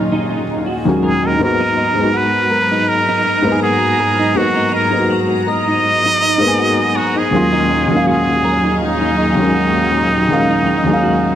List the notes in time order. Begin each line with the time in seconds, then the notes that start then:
Already playing: D#2 A#2 F#3 G#3 A#3 C#4 D#4 G#4 F5
0.12 D#4
0.29 D#4
0.66 F#4
0.85 D#2 F#3 G#3 A#3 C#4
0.89 F#4
1.03 G#4 A#4
1.23 D#4 A#4
1.39 G#2 A#3 B3 D#4 A#5
1.44 F#4 A#4
1.60 D#4
1.77 D#4
1.93 G#2 G#3
1.98 B3 D#4
2.03 F#4
2.14 F#4 B4
2.50 A#4
2.71 D#4
2.89 A#4
3.08 D#4
3.25 D#4
3.42 G#2 A#3
3.47 B3 D#4
3.52 G#4
3.62 F#4 G#4
3.99 A#4
4.19 D#4
4.35 G#2 A#3 B3 D#4 F#4
4.40 F#4
4.56 D#4
4.72 D#4 A#4
4.90 G#2 A#3
4.95 B3 D#4
5.00 F#4
5.09 F#4
5.47 A#4 D#5
5.67 D#4
6.04 D#4
6.21 D#4
6.38 G#2 A#3
6.43 B3 D#4
6.48 G#4
6.58 F#4
6.95 F#4 A#4
7.16 D#4 G#4
7.31 D#2 A#2 F#3 G#3 A#3 C#4 G#4 F5
7.36 F4
7.53 D#4
7.69 D#4
7.87 D#2 F#3 G#3
7.92 A#3 C#4
7.96 F5
8.07 F#4 G#4
8.44 A#4
8.64 D#4
8.83 D#4
9.01 D#4
9.17 D#4
9.35 D#2 F#3
9.39 G#3 A#3 C#4
9.44 F#4
9.55 F#4
9.91 A#4
10.13 D#4
10.28 D#2 F#3 G#3 A#3
10.32 C#4 F5
10.49 D#4
10.65 D#4
10.83 D#2 F#3 G#3
10.89 A#3 C#4
10.93 F5
11.02 F#4